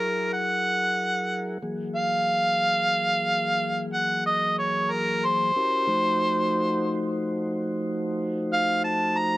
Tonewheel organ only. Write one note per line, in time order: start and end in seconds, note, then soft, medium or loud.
0.00 1.58 F#3 medium
0.00 1.58 E4 medium
0.00 1.58 G#4 medium
0.00 1.58 A#4 medium
1.62 5.52 E3 medium
1.62 5.52 F#3 medium
1.62 5.52 A#3 medium
1.62 5.52 G#4 medium
5.56 5.88 C#4 medium
5.56 5.89 E4 medium
5.56 5.88 F#4 medium
5.56 5.89 G4 medium
5.56 5.89 A#4 medium
5.87 9.37 F3 medium
5.87 9.37 A3 medium
5.87 9.37 D#4 medium
5.87 9.37 F#4 medium
5.87 9.37 C5 medium